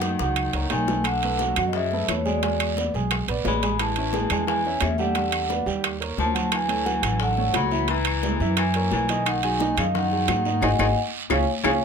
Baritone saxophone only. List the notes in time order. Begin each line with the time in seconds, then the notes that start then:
Already playing: D#3
0.70 D#3
1.05 D3
1.67 B2
1.74 C#3
2.09 A2
2.27 B2
3.47 G#3
3.80 E3
4.47 E3
4.81 C#3
4.98 D3
6.19 F3
6.53 E3
7.21 D3
7.56 F#3
7.90 E3
8.58 E3
8.93 E3
9.26 D#3
9.43 D#3
9.78 C#3
9.94 D#3
10.63 D#3
10.80 D#3
11.30 C#3
11.64 C#3